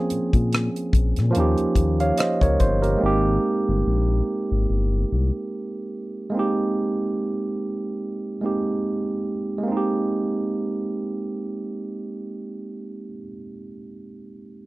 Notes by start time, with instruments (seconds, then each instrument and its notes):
Already playing: tine electric piano F3 A#3 C4 C#4 G#4
0.10 analog synth bass A#2, closed hi-hat
0.33 analog synth bass A#2, kick, closed hi-hat
0.53 cross-stick, closed hi-hat
0.76 closed hi-hat
0.93 analog synth bass A#1, kick, closed hi-hat
1.16 analog synth bass A#2, cross-stick, closed hi-hat
1.31 tine electric piano F3 A#3
1.35 analog synth bass D#2, tine electric piano C#4 D#4, closed hi-hat
1.40 tine electric piano G4
1.58 analog synth bass D#2, closed hi-hat
1.75 analog synth bass D#2, kick, closed hi-hat
2.00 tine electric piano C#5 F5, closed hi-hat
2.18 tine electric piano C5 D#5, cross-stick, closed hi-hat
2.41 analog synth bass C#2, tine electric piano A#4 C#5, kick, closed hi-hat
2.60 analog synth bass G1, tine electric piano C5, kick, closed hi-hat
2.82 tine electric piano G4 A#4, closed hi-hat
2.97 tine electric piano G#3 A#3 C4
3.03 analog synth bass G#1, tine electric piano D#4 G4
3.69 analog synth bass G1
3.87 analog synth bass A#1
4.52 analog synth bass G#1
4.70 analog synth bass G1
5.12 analog synth bass C2
6.30 tine electric piano G#3 A#3
6.35 tine electric piano C4 D#4
6.39 tine electric piano G4
8.41 tine electric piano G#3 A#3 C4 D#4
8.46 tine electric piano G4
9.58 tine electric piano G#3
9.63 tine electric piano A#3
9.68 tine electric piano C4
9.72 tine electric piano D#4
9.77 tine electric piano G4